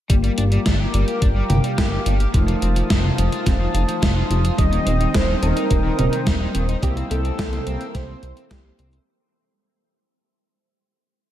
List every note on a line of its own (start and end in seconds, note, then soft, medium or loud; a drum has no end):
0.10 0.30 G1 loud
0.10 0.14 G3 medium
0.10 2.03 A#3 medium
0.10 2.03 F4 medium
0.10 2.03 G4 loud
0.10 2.32 A#4 medium
0.10 4.54 F5 medium
0.10 2.32 G5 medium
0.10 2.32 D6 medium
0.10 kick loud
0.10 closed hi-hat medium
0.24 0.31 G3 loud
0.24 closed hi-hat soft
0.38 0.58 G1 medium
0.38 0.42 D4 loud
0.38 closed hi-hat medium
0.52 0.59 G3 medium
0.52 closed hi-hat medium
0.66 0.86 G1 loud
0.66 0.76 D4 medium
0.66 kick loud
0.66 snare loud
0.66 closed hi-hat medium
0.80 0.87 G4 medium
0.94 1.04 G1 loud
0.94 1.04 G3 medium
0.94 closed hi-hat medium
1.08 1.15 G4 medium
1.08 closed hi-hat medium
1.22 1.42 G1 medium
1.22 1.26 D4 medium
1.22 kick loud
1.22 closed hi-hat medium
1.36 1.43 G3 loud
1.50 1.60 G1 loud
1.50 1.57 G4 medium
1.50 closed hi-hat medium
1.50 mid tom medium
1.64 1.71 G3 medium
1.64 closed hi-hat medium
1.78 1.98 G1 loud
1.78 1.85 G4 medium
1.78 kick loud
1.78 snare loud
1.78 closed hi-hat medium
1.92 1.99 G4 medium
2.06 2.26 G1 medium
2.06 2.16 G3 medium
2.06 2.14 A#3 medium
2.06 2.14 F4 medium
2.06 2.14 A4 medium
2.06 closed hi-hat medium
2.20 2.27 G4 medium
2.20 closed hi-hat medium
2.34 2.54 F1 loud
2.34 2.38 F3 medium
2.34 4.27 A3 medium
2.34 4.27 D#4 medium
2.34 4.27 F4 loud
2.34 6.79 C5 medium
2.34 4.56 A5 medium
2.34 6.79 D#6 medium
2.34 kick loud
2.34 closed hi-hat medium
2.48 2.55 F3 medium
2.48 closed hi-hat soft
2.62 2.82 F1 medium
2.62 2.66 C4 loud
2.62 closed hi-hat medium
2.76 2.83 F3 medium
2.76 closed hi-hat medium
2.90 3.10 F1 loud
2.90 3.00 C4 medium
2.90 kick loud
2.90 snare loud
2.90 closed hi-hat medium
3.04 3.11 F4 medium
3.04 mid tom medium
3.18 3.28 F1 loud
3.18 3.29 F3 medium
3.18 closed hi-hat medium
3.32 3.39 F4 medium
3.32 closed hi-hat medium
3.46 3.67 F1 medium
3.46 3.50 C4 medium
3.46 kick loud
3.46 snare medium
3.46 closed hi-hat medium
3.60 3.67 F3 medium
3.74 3.84 F1 loud
3.74 3.81 F4 medium
3.74 closed hi-hat medium
3.88 3.95 F3 medium
3.88 closed hi-hat medium
4.02 4.23 F1 loud
4.02 4.09 F4 medium
4.02 kick loud
4.02 snare loud
4.02 closed hi-hat medium
4.16 4.23 F4 medium
4.30 4.51 F1 medium
4.30 4.41 F3 medium
4.30 4.38 A3 medium
4.30 4.38 D#4 medium
4.30 4.38 G4 medium
4.30 closed hi-hat medium
4.44 4.51 F4 medium
4.44 closed hi-hat medium
4.58 4.79 D#1 loud
4.58 4.62 D#3 medium
4.58 4.64 G3 loud
4.58 6.51 G3 loud
4.58 6.51 C4 medium
4.58 6.51 D#4 loud
4.58 5.16 D#5 loud
4.58 6.81 G5 medium
4.58 kick loud
4.58 closed hi-hat medium
4.72 4.79 D#3 loud
4.72 4.82 A#3 medium
4.72 closed hi-hat soft
4.86 5.07 D#1 medium
4.86 4.91 A#3 loud
4.86 4.92 C4 loud
4.86 closed hi-hat medium
5.00 5.07 D#3 medium
5.00 5.10 D#4 medium
5.00 closed hi-hat medium
5.14 5.35 D#1 loud
5.14 5.20 G3 medium
5.14 5.25 A#3 medium
5.14 5.42 C5 loud
5.14 kick loud
5.14 snare loud
5.14 closed hi-hat medium
5.28 5.38 A#3 medium
5.28 5.35 D#4 medium
5.42 5.53 D#1 loud
5.42 5.53 D#3 medium
5.42 5.52 C4 medium
5.42 6.51 A#4 medium
5.42 closed hi-hat medium
5.56 5.62 D#4 medium
5.56 5.63 D#4 medium
5.56 closed hi-hat medium
5.70 5.91 D#1 medium
5.70 5.76 G3 loud
5.70 5.75 A#3 medium
5.70 kick loud
5.70 closed hi-hat medium
5.84 5.91 D#3 loud
5.84 5.98 A#3 medium
5.98 6.09 D#1 loud
5.98 6.08 C4 medium
5.98 6.05 D#4 medium
5.98 closed hi-hat medium
5.98 mid tom medium
6.12 6.20 D#3 medium
6.12 6.22 D#4 medium
6.12 closed hi-hat medium
6.26 6.47 D#1 loud
6.26 6.36 G3 medium
6.26 6.34 D#4 medium
6.26 kick loud
6.26 snare loud
6.26 closed hi-hat medium
6.40 6.50 A#3 loud
6.40 6.48 D#4 medium
6.54 6.75 D#1 medium
6.54 6.65 D#3 medium
6.54 6.62 G3 medium
6.54 6.64 C4 medium
6.54 6.62 C4 medium
6.54 6.62 F4 medium
6.54 closed hi-hat medium
6.68 6.78 D#4 medium
6.68 6.76 D#4 medium
6.68 closed hi-hat medium
6.83 7.03 C2 loud
6.83 6.88 E3 loud
6.83 8.62 A#3 loud
6.83 8.62 C4 medium
6.83 6.87 C4 medium
6.83 8.62 E4 loud
6.83 6.95 G4 medium
6.83 9.05 C5 medium
6.83 9.05 G5 medium
6.83 9.05 E6 medium
6.83 kick loud
6.83 closed hi-hat medium
6.97 7.06 G3 medium
6.97 7.04 C4 loud
6.97 closed hi-hat soft
7.10 7.31 C2 medium
7.10 7.16 A#3 loud
7.10 7.15 G4 loud
7.10 7.68 A4 loud
7.10 closed hi-hat medium
7.25 7.32 C4 medium
7.25 7.34 C4 medium
7.25 closed hi-hat medium
7.39 7.59 C2 loud
7.39 7.44 E3 medium
7.39 7.49 G4 medium
7.39 kick loud
7.39 snare loud
7.39 closed hi-hat medium
7.53 7.62 G3 medium
7.53 7.60 C5 medium
7.53 closed hi-hat soft
7.53 mid tom medium
7.67 7.77 C2 loud
7.67 7.76 A#3 medium
7.67 7.77 C4 medium
7.67 7.96 A#4 loud
7.67 closed hi-hat medium
7.81 7.86 C4 medium
7.81 7.88 C5 medium
7.81 closed hi-hat medium
7.95 8.15 C2 medium
7.95 8.00 E3 loud
7.95 7.99 G4 medium
7.95 8.52 C5 loud
7.95 kick loud
7.95 snare medium
7.95 closed hi-hat medium
8.09 8.22 G3 medium
8.09 8.16 C4 loud
8.22 8.33 C2 loud
8.22 8.32 A#3 medium
8.22 8.30 C5 medium
8.22 closed hi-hat medium
8.37 8.46 C4 medium
8.37 8.44 C4 medium
8.37 closed hi-hat soft
8.51 8.71 C2 loud
8.51 8.60 E3 medium
8.51 8.93 G4 medium
8.51 8.58 C5 medium
8.51 kick loud
8.51 snare loud
8.51 closed hi-hat medium
8.65 8.74 G3 loud
8.65 9.04 A#3 medium
8.65 9.04 C4 medium
8.65 9.04 E4 medium
8.65 8.72 C5 medium
8.79 8.99 C2 medium
8.79 8.88 A#3 medium
8.79 8.89 C4 medium
8.79 closed hi-hat medium
8.93 9.02 C4 medium
8.93 9.00 C5 medium
8.93 closed hi-hat medium